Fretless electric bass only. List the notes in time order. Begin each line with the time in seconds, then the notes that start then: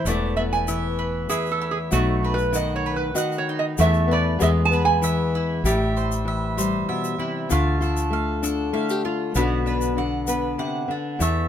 0.05 E1
1.93 B1
3.79 E2
4.42 E2
5.64 A1
7.51 D2
9.35 B1
11.20 E2